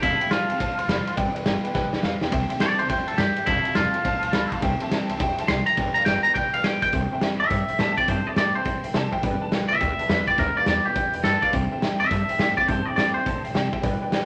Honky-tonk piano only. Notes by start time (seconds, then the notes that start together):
0.02 C5 F5 A5
0.20 C5 F5 G5
0.32 C5 F5 A5
0.49 C5 F5 A5
0.60 C5 F5 A5
0.78 C5 F5 C6
0.88 C5 F5 B5
1.07 C5 F5 C6
1.16 B4 D5 G5
1.34 B4 D5 G5
1.46 B4 D5 G5
1.64 B4 D5 G5
1.74 B4 D5 G5
1.93 B4 D5 G5
2.03 B4 D5 F5
2.22 B4 D5 G5
2.32 C5 E5 G5
2.49 C5 E5 G5
2.61 C5 E5 A5
2.79 C5 E5 A5
2.90 C5 E5 G5
3.08 C5 E5 G5
3.18 C5 E5 G5
3.37 C5 E5 G5
3.47 C5 F5 A5
3.65 C5 F5 A5
3.76 C5 F5 A5
3.95 C5 F5 A5
4.05 C5 F5 A5
4.24 C5 F5 A5
4.33 C5 F5 A5 B5
4.52 C5 F5 A5
4.62 C5 E5 G5
4.81 C5 E5 A5
4.92 C5 E5 A5
5.10 C5 E5 A5
5.20 C5 E5 G5
5.39 C5 E5 A5
5.50 C5 G5
5.67 C5 E5 G5
5.78 B4 D5 G5
5.97 B4 D5 F5
6.08 B4 D5 G5
6.26 B4 D5 G5
6.36 B4 D5 G5
6.55 B4 D5 G5
6.65 B4 D5 G5
6.83 B4 D5 G5
6.94 C5 E5 G5
7.12 C5 E5 G5
7.22 C5 E5 G5
7.40 C5 E5 A5
7.51 C5 E5 G5
7.69 C5 E5 G5
7.79 C5 E5 A5
7.98 C5 E5 G5
8.09 C5 E5 A5
8.26 C5 E5 A5
8.37 C5 E5 G5
8.55 C5 E5 A5
8.65 C5 E5 G5
8.84 C5 E5 G5
8.94 C5 E5 A5
9.12 C5 E5 G5
9.23 B4 D5 G5
9.41 B4 D5 A5
9.51 B4 D5 G5
9.69 B4 D5 E5
9.80 B4 D5 G5
9.99 B4 D5 A5
10.09 B4 D5 E5
10.27 B4 D5 G5
10.38 B4 D5 E5
10.57 B4 D5 F5
10.67 B4 D5 G5
10.86 B4 D5 G5
10.97 B4 D5 G5
11.14 B4 D5 G5
11.24 B4 D5 G5
11.43 B4 D5 F5
11.53 C5 E5 G5
11.71 C5 E5 G5
11.82 C5 E5 G5
12.00 C5 E5 G5
12.10 C5 E5 A5
12.29 C5 E5 G5
12.39 C5 E5 G5
12.58 C5 E5 G5
12.69 C5 E5 A5
12.87 C5 E5 G5
12.98 C5 E5 G5
13.16 C5 E5 G5
13.26 C5 E5 A5
13.44 C5 E5 G5
13.54 C5 E5 G5
13.72 C5 E5 G5
13.83 B4 D5 G5
14.02 B4 D5 G5
14.13 B4 D5 G5